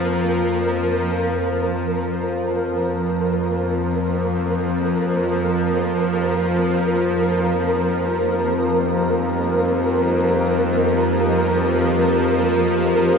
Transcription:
0.00 1.23 F2 medium
0.00 1.22 F3 medium
0.00 1.20 A#4 medium
1.21 13.18 F2 medium
1.21 13.18 F3 medium
1.21 13.18 F4 medium
1.21 13.18 A#4 medium
2.09 13.18 G4 medium

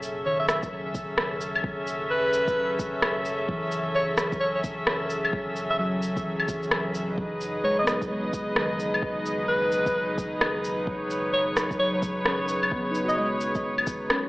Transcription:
0.00 7.16 F#1 medium
0.00 14.29 F#3 medium
0.00 7.14 C#4 medium
0.00 14.29 G#4 medium
0.00 7.14 A4 medium
0.00 7.14 E5 medium
0.00 shaker medium
0.26 1.60 D#3 medium
0.26 0.37 C#5 medium
0.40 0.45 E5 medium
0.49 0.58 E5 medium
0.49 cross-stick loud
0.49 shaker medium
0.63 kick loud
0.63 shaker soft
0.95 kick loud
0.95 shaker medium
1.18 cross-stick loud
1.41 shaker medium
1.55 claves medium
1.64 kick loud
1.87 shaker medium
2.10 2.76 B4 medium
2.33 shaker medium
2.48 kick loud
2.48 shaker soft
2.79 kick loud
2.79 shaker medium
3.02 cross-stick loud
3.02 claves medium
3.25 shaker medium
3.49 4.83 E3 medium
3.49 kick loud
3.72 shaker medium
3.95 4.07 C#5 medium
4.18 cross-stick loud
4.18 shaker medium
4.32 kick loud
4.32 shaker soft
4.40 4.50 C#5 medium
4.55 4.61 C#5 medium
4.64 kick loud
4.64 shaker medium
4.87 cross-stick loud
5.10 shaker medium
5.25 claves medium
5.33 kick loud
5.56 shaker medium
5.70 5.76 E5 medium
5.79 7.13 F#3 medium
5.79 5.88 E5 medium
6.02 shaker medium
6.17 kick loud
6.17 shaker soft
6.25 7.37 E3 medium
6.40 claves medium
6.48 kick loud
6.48 shaker medium
6.63 shaker soft
6.71 cross-stick loud
6.71 claves medium
6.95 shaker medium
7.18 14.10 F#1 medium
7.18 14.29 D#4 medium
7.18 14.29 B4 medium
7.18 10.84 D#5 medium
7.18 kick loud
7.41 shaker soft
7.64 8.09 G#3 medium
7.64 7.76 C#5 medium
7.79 7.84 D#5 medium
7.83 9.15 B3 medium
7.83 7.97 D#5 medium
7.83 cross-stick loud
7.83 shaker medium
8.02 kick loud
8.02 shaker soft
8.10 9.44 G#3 medium
8.33 kick loud
8.33 shaker soft
8.56 9.90 D#3 medium
8.56 cross-stick loud
8.80 shaker medium
8.94 claves medium
9.03 kick loud
9.26 shaker medium
9.48 10.14 B4 medium
9.72 shaker medium
9.86 kick loud
9.86 shaker soft
10.18 kick loud
10.18 shaker medium
10.41 cross-stick loud
10.41 claves medium
10.64 shaker soft
10.87 14.29 C#5 medium
10.87 kick loud
11.10 shaker medium
11.33 11.45 C#5 medium
11.57 cross-stick loud
11.57 shaker medium
11.71 kick medium
11.71 shaker soft
11.79 13.13 F#3 medium
11.79 11.89 C#5 medium
11.93 11.99 C#5 medium
12.02 kick loud
12.02 shaker medium
12.26 13.60 C#4 medium
12.26 cross-stick loud
12.48 shaker medium
12.63 claves medium
12.72 14.06 B3 medium
12.72 kick loud
12.91 14.22 D#4 medium
12.91 shaker medium
13.05 14.29 F#4 medium
13.05 13.15 D#5 medium
13.09 shaker soft
13.17 14.29 G#3 medium
13.17 13.27 D#5 medium
13.41 shaker medium
13.55 kick loud
13.55 shaker soft
13.78 claves medium
13.87 kick loud
13.87 shaker medium
14.10 14.29 C#4 medium
14.10 cross-stick loud
14.10 claves medium

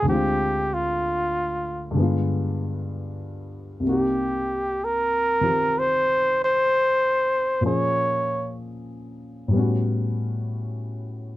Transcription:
0.02 1.93 D2 soft
0.02 1.92 D3 soft
0.08 1.95 G#3 soft
0.08 1.97 C4 soft
0.08 0.75 G4 medium
0.13 1.99 F4 medium
0.74 1.97 F4 medium
1.91 3.82 G2 soft
1.91 3.84 D3 soft
1.96 3.85 G#3 soft
1.96 3.86 B3 soft
2.02 3.88 F4 medium
3.80 7.61 C2 soft
3.80 7.62 C3 soft
3.86 7.62 A#3 soft
3.86 7.65 D#4 soft
3.86 4.86 G4 medium
3.91 5.43 G4 soft
4.84 5.80 A#4 medium
5.41 7.62 D#3 soft
5.41 7.63 C4 soft
5.41 7.63 F4 soft
5.41 7.64 G4 soft
5.79 6.40 C5 medium
6.44 7.62 C5 medium
7.61 9.51 A#2 soft
7.61 9.52 F3 soft
7.61 9.53 A#3 soft
7.61 9.53 C#4 soft
7.66 9.54 G#4 soft
7.66 8.55 C#5 medium
9.48 11.37 A2 soft
9.48 11.37 G3 soft
9.53 11.37 B3 soft
9.53 11.37 C#4 soft
9.59 11.37 F#4 medium

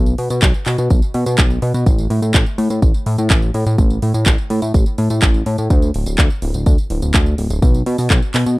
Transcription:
0.00 0.15 B1 loud
0.06 closed hi-hat soft
0.06 tambourine soft
0.18 0.29 B2 medium
0.18 open hi-hat loud
0.30 0.41 B2 medium
0.30 closed hi-hat medium
0.30 tambourine medium
0.42 0.53 B1 medium
0.42 kick loud
0.42 clap loud
0.42 closed hi-hat soft
0.42 tambourine medium
0.54 closed hi-hat soft
0.54 tambourine soft
0.66 0.77 B2 loud
0.66 clap medium
0.66 open hi-hat loud
0.78 0.89 B2 medium
0.78 closed hi-hat medium
0.78 tambourine medium
0.90 1.01 B1 medium
0.90 kick loud
0.90 closed hi-hat medium
0.90 tambourine medium
1.02 closed hi-hat soft
1.02 tambourine soft
1.14 1.25 B2 medium
1.14 open hi-hat loud
1.26 1.37 B2 medium
1.26 closed hi-hat medium
1.26 tambourine medium
1.38 1.59 B1 medium
1.38 kick loud
1.38 clap loud
1.38 closed hi-hat medium
1.38 tambourine soft
1.50 closed hi-hat soft
1.50 tambourine soft
1.62 1.73 B2 medium
1.62 open hi-hat loud
1.74 1.85 B2 medium
1.74 closed hi-hat soft
1.74 tambourine medium
1.86 2.07 A1 loud
1.86 kick loud
1.86 closed hi-hat medium
1.86 tambourine medium
1.98 closed hi-hat soft
1.98 tambourine soft
2.10 2.21 A2 medium
2.10 open hi-hat loud
2.22 2.33 A2 medium
2.22 closed hi-hat medium
2.22 tambourine medium
2.34 2.45 A1 medium
2.34 kick loud
2.34 clap loud
2.34 closed hi-hat soft
2.34 tambourine medium
2.46 closed hi-hat soft
2.46 tambourine soft
2.58 2.69 A2 loud
2.58 open hi-hat loud
2.70 2.81 A2 medium
2.70 closed hi-hat medium
2.70 tambourine medium
2.82 2.93 A1 medium
2.82 kick loud
2.82 closed hi-hat medium
2.82 tambourine medium
2.94 closed hi-hat soft
2.94 tambourine soft
3.06 3.17 A2 medium
3.06 open hi-hat loud
3.18 3.29 A2 medium
3.18 closed hi-hat medium
3.18 tambourine medium
3.30 3.51 A1 medium
3.30 kick loud
3.30 clap loud
3.30 closed hi-hat medium
3.30 tambourine medium
3.42 closed hi-hat soft
3.42 tambourine soft
3.54 3.65 A2 medium
3.54 open hi-hat loud
3.66 3.77 A2 medium
3.66 closed hi-hat medium
3.66 tambourine medium
3.78 3.99 A1 loud
3.78 kick loud
3.78 closed hi-hat medium
3.78 tambourine medium
3.90 closed hi-hat soft
3.90 tambourine soft
4.02 4.13 A2 medium
4.02 open hi-hat loud
4.14 4.25 A2 medium
4.14 closed hi-hat medium
4.14 tambourine medium
4.26 4.37 A1 loud
4.26 kick loud
4.26 clap loud
4.26 closed hi-hat medium
4.26 tambourine medium
4.38 closed hi-hat soft
4.38 tambourine soft
4.50 4.61 A2 loud
4.50 open hi-hat loud
4.62 4.73 A2 medium
4.62 closed hi-hat medium
4.62 tambourine medium
4.74 4.85 A1 medium
4.74 kick loud
4.74 closed hi-hat medium
4.74 tambourine medium
4.86 closed hi-hat soft
4.86 tambourine soft
4.98 5.09 A2 medium
4.98 open hi-hat loud
5.10 5.21 A2 medium
5.10 closed hi-hat medium
5.10 tambourine medium
5.22 5.43 A1 medium
5.22 kick loud
5.22 clap loud
5.22 closed hi-hat medium
5.22 tambourine medium
5.34 closed hi-hat soft
5.34 tambourine soft
5.46 5.57 A2 loud
5.46 open hi-hat loud
5.58 5.69 A2 medium
5.58 closed hi-hat medium
5.58 tambourine medium
5.70 5.91 D2 loud
5.70 kick loud
5.70 closed hi-hat medium
5.70 tambourine medium
5.82 closed hi-hat soft
5.82 tambourine soft
5.94 6.05 D1 medium
5.94 open hi-hat loud
6.06 6.17 D1 medium
6.06 closed hi-hat medium
6.06 tambourine medium
6.18 6.29 D2 loud
6.18 kick loud
6.18 clap loud
6.18 closed hi-hat medium
6.18 tambourine medium
6.30 closed hi-hat soft
6.30 tambourine soft
6.42 6.53 D1 loud
6.42 open hi-hat loud
6.54 6.65 D1 medium
6.54 closed hi-hat medium
6.54 tambourine medium
6.66 6.77 D2 medium
6.66 kick loud
6.66 closed hi-hat medium
6.66 tambourine medium
6.78 closed hi-hat soft
6.78 tambourine soft
6.90 7.01 D1 medium
6.90 open hi-hat loud
7.02 7.13 D1 medium
7.02 closed hi-hat medium
7.02 tambourine medium
7.14 7.35 D2 medium
7.14 kick loud
7.14 clap loud
7.14 closed hi-hat medium
7.14 tambourine soft
7.26 closed hi-hat soft
7.26 tambourine soft
7.38 7.49 D1 medium
7.38 open hi-hat loud
7.50 7.61 D1 medium
7.50 closed hi-hat medium
7.50 tambourine medium
7.62 7.83 B1 loud
7.62 kick loud
7.62 closed hi-hat medium
7.62 tambourine soft
7.74 closed hi-hat soft
7.74 tambourine soft
7.86 7.97 B2 loud
7.86 open hi-hat loud
7.98 8.09 B2 medium
7.98 open hi-hat medium
7.98 tambourine medium
8.10 8.21 B1 medium
8.10 kick loud
8.10 clap loud
8.10 closed hi-hat medium
8.10 tambourine soft
8.22 closed hi-hat soft
8.22 tambourine soft
8.34 8.45 B2 loud
8.34 clap medium
8.34 open hi-hat loud
8.46 8.57 B2 medium
8.46 closed hi-hat medium
8.46 tambourine medium

